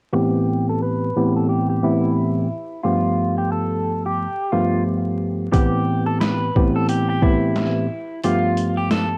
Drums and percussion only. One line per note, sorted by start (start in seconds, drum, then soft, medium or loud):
5.54 kick loud
5.54 closed hi-hat medium
6.21 snare loud
6.21 closed hi-hat medium
6.56 kick medium
6.89 closed hi-hat medium
7.22 kick medium
7.56 snare loud
7.56 closed hi-hat medium
8.23 closed hi-hat medium
8.57 closed hi-hat medium
8.91 snare loud
8.91 closed hi-hat medium